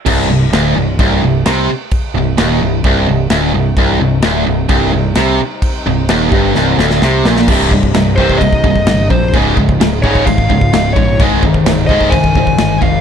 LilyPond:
<<
  \new Staff \with { instrumentName = "Lead electric guitar" } { \time 4/4 \key c \phrygian \tempo 4 = 129 r1 | r1 | r1 | r1 |
r4. c''8 ees''4. c''8 | r4. des''8 f''4. des''8 | r4. ees''8 aes''4. f''8 | }
  \new Staff \with { instrumentName = "String section" } { \time 4/4 \key c \phrygian << { r1 | r1 | <c c' ees'>1~ | <c c' ees'>1 |
<c c' ees'>1 | <des ees' f'>1 | <bes' c''>1 | } \\ { r1 | r1 | g1~ | g1 |
g1 | aes1~ | aes1 | } >> }
  \new Staff \with { instrumentName = "Distorted electric guitar" } { \clef bass \time 4/4 \key c \phrygian c,8 c,8 d,8 c,8 c,8 c,8 c8 r8 | r8 c,8 ees,8 c,8 c,8 c,8 d,8 c,8 | c,8 c,8 d,8 c,8 c,8 c,8 c8 r8 | r8 c,8 ees,8 g,8 c,8 d,8 c8 bes,8 |
<c, g, c>8 <c, g,>8 <c, g,>8 <c, g, c>8 <c, g,>8 <c, g,>8 <c, g,>8 <c, g,>8 | <des, aes, des>8 <des, aes,>8 <des, aes,>8 <des, aes, des>8 <des, aes,>8 <des, aes,>8 <des, aes,>8 <des, aes,>8 | <aes, ees aes>8 <aes, ees>8 <aes, ees>8 <aes, ees aes>8 <aes, ees>8 <aes, ees>8 <aes, ees>8 <aes, ees>8 | }
  \new Staff \with { instrumentName = "Distorted electric guitar" } { \clef bass \time 4/4 \key c \phrygian c,8 c,8 d,8 c,8 c,8 c,8 c8 r8 | r8 c,8 ees,8 c,8 c,8 c,8 d,8 c,8 | c,8 c,8 d,8 c,8 c,8 c,8 c8 r8 | r8 c,8 ees,8 g,8 c,8 d,8 c8 bes,8 |
<c, g, c>8 <c, g,>8 <c, g,>8 <c, g, c>8 <c, g,>8 <c, g,>8 <c, g,>8 <c, g,>8 | <des, aes, des>8 <des, aes,>8 <des, aes,>8 <des, aes, des>8 <des, aes,>8 <des, aes,>8 <des, aes,>8 <des, aes,>8 | <aes, ees aes>8 <aes, ees>8 <aes, ees>8 <aes, ees aes>8 <aes, ees>8 <aes, ees>8 <aes, ees>8 <aes, ees>8 | }
  \new Staff \with { instrumentName = "Picked electric bass" } { \clef bass \time 4/4 \key c \phrygian c,,8 c,,8 d,,8 c,,8 c,,8 c,,8 c,8 r8 | r8 c,,8 ees,,8 c,,8 c,,8 c,,8 d,,8 c,,8 | c,,8 c,,8 d,,8 c,,8 c,,8 c,,8 c,8 r8 | r8 c,,8 ees,,8 g,,8 c,,8 d,,8 c,8 bes,,8 |
c,,8 c,,8 c,,8 c,,8 c,,8 c,,8 g,,8 bes,,8 | des,,8 des,,8 des,,8 aes,,8 aes,,8 des,,8 des,,8 bes,,8 | c,,8 c,,8 c,,8 c,,8 c,,8 c,,8 g,,8 f,,8 | }
  \new DrumStaff \with { instrumentName = "Drums" } \drummode { \time 4/4 <cymc bd>4 <cymc sn>4 <cymc bd>4 <cymc sn>4 | <cymc bd>4 <cymc sn>4 <cymc bd>4 <cymc sn>4 | <cymc bd>4 <cymc sn>4 <cymc bd>4 <cymc sn>4 | <cymc bd>4 <cymc sn>8 bd8 sn8 sn16 sn16 sn8 sn16 sn16 |
<cymc bd>8 bd16 bd16 <cymc sn>8 bd16 bd16 <cymc bd>16 bd16 bd16 bd16 <cymc sn>8 bd8 | <cymc bd>8 bd16 bd16 <cymc sn>8 bd16 bd16 <cymc bd>16 bd16 bd16 bd16 <cymc sn>8 bd8 | <cymc bd>8 bd16 bd16 <cymc sn>8 bd16 bd16 <cymc bd>16 bd16 bd16 bd16 <cymc sn>8 bd8 | }
>>